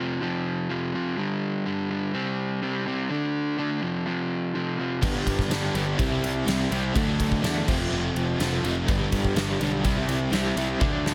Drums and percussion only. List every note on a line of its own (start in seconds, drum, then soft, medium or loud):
5.03 kick loud
5.03 crash loud
5.27 kick medium
5.27 ride medium
5.39 kick medium
5.39 snare soft
5.51 snare loud
5.51 ride loud
5.75 ride medium
5.99 kick loud
5.99 ride loud
6.24 ride medium
6.48 snare loud
6.48 ride loud
6.72 ride medium
6.96 kick loud
6.96 ride loud
7.20 kick medium
7.20 ride medium
7.32 kick medium
7.44 snare loud
7.44 ride loud
7.68 kick loud
7.68 crash loud
8.16 ride medium
8.40 snare loud
8.40 ride loud
8.65 ride medium
8.88 kick loud
8.88 ride loud
9.12 kick medium
9.12 ride medium
9.25 kick medium
9.36 snare loud
9.36 ride loud
9.61 ride medium
9.84 kick loud
9.84 ride loud
10.09 ride medium
10.33 snare loud
10.33 ride loud
10.57 ride medium
10.81 kick loud
10.81 high tom medium
11.06 snare medium